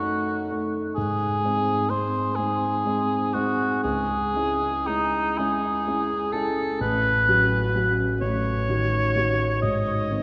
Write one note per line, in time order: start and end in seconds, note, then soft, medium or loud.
0.00 0.03 A3 soft
0.00 0.46 A3 soft
0.00 0.03 D#4 soft
0.00 0.46 D#4 soft
0.00 0.69 F#4 medium
0.51 0.93 A3 soft
0.51 0.93 D#4 soft
0.95 1.42 G#2 medium
0.95 1.91 G#4 medium
1.44 1.86 G#3 soft
1.44 1.86 C4 soft
1.44 1.86 D#4 soft
1.89 2.33 G#3 soft
1.89 2.33 C4 soft
1.89 2.33 D#4 soft
1.89 2.37 C5 medium
2.36 2.82 G#3 soft
2.36 2.82 C4 soft
2.36 2.82 D#4 soft
2.36 3.35 G#4 medium
2.86 3.30 G#3 soft
2.86 3.30 C4 soft
2.86 3.31 D#4 soft
3.34 3.80 G#3 soft
3.34 3.79 C4 soft
3.34 3.80 D#4 soft
3.34 3.83 F#4 medium
3.83 4.33 C#2 medium
3.83 4.88 G#4 medium
4.36 4.84 G#3 soft
4.36 4.84 C#4 soft
4.36 4.84 E4 soft
4.87 5.34 G#3 soft
4.87 5.35 C#4 soft
4.87 5.39 D#4 medium
4.87 5.35 E4 soft
5.38 5.82 G#3 soft
5.38 5.82 C#4 soft
5.38 5.83 E4 soft
5.38 6.34 G#4 medium
5.87 6.29 G#3 soft
5.87 6.30 C#4 soft
5.87 6.30 E4 soft
6.32 6.77 G#3 soft
6.32 6.77 C#4 soft
6.32 6.77 E4 soft
6.32 6.80 A4 medium
6.81 7.26 A1 medium
6.81 7.92 B4 medium
7.28 7.70 F#3 soft
7.28 7.70 C#4 soft
7.28 7.71 F#4 soft
7.74 8.17 F#3 soft
7.74 8.17 C#4 soft
7.74 8.18 F#4 soft
8.21 8.67 A1 medium
8.21 9.58 C#5 medium
8.69 9.12 D#3 soft
8.69 9.12 D#4 soft
8.69 9.12 F#4 soft
9.16 9.58 D#3 soft
9.16 9.59 D#4 soft
9.16 9.59 F#4 soft
9.62 10.08 G#2 soft
9.62 10.23 D#5 medium
10.11 10.23 D#3 soft
10.11 10.23 C4 soft
10.11 10.23 D#4 soft